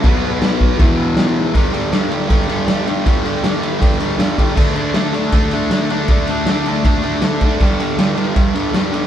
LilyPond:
<<
  \new Staff \with { instrumentName = "Distorted electric guitar" } { \clef bass \time 4/4 \key g \major \tempo 4 = 158 <b, fis b>2 <e, b, e>2 | <g, d g>8 <g, d g>8 <g, d g>8 <g, d g>8 <g, d g>8 <g, d g>8 <g, d g>8 <g, d g>8 | <g, d g>8 <g, d g>8 <g, d g>8 <g, d g>8 <g, d g>8 <g, d g>8 <g, d g>8 <g, d g>8 | <d a d'>8 <d a d'>8 <d a d'>8 <d a d'>8 <d a d'>8 <d a d'>8 <d a d'>8 <d a d'>8 |
<d a d'>8 <d a d'>8 <d a d'>8 <d a d'>8 <d a d'>8 <d a d'>8 <d a d'>8 <d a d'>8 | <g, d g>8 <g, d g>8 <g, d g>8 <g, d g>8 <g, d g>8 <g, d g>8 <g, d g>8 <g, d g>8 | }
  \new DrumStaff \with { instrumentName = "Drums" } \drummode { \time 4/4 <cymc bd>4 <cymc sn>8 bd8 <cymc bd>4 <cymc sn>4 | <bd cymr>8 cymr8 <cymr sn>8 cymr8 <bd cymr>8 cymr8 <cymr sn>8 cymr8 | <bd cymr>8 cymr8 <cymr sn>8 cymr8 <bd cymr>8 cymr8 <cymr sn>8 <bd cymr>8 | <cymc bd>8 cymr8 <cymr sn>8 cymr8 <bd cymr>8 cymr8 <cymr sn>8 cymr8 |
<bd cymr>8 cymr8 <cymr sn>8 cymr8 <bd cymr>8 cymr8 <cymr sn>8 <bd cymr>8 | <cymc bd>8 cymr8 <cymr sn>8 cymr8 <bd cymr>8 cymr8 <cymr sn>8 cymr8 | }
>>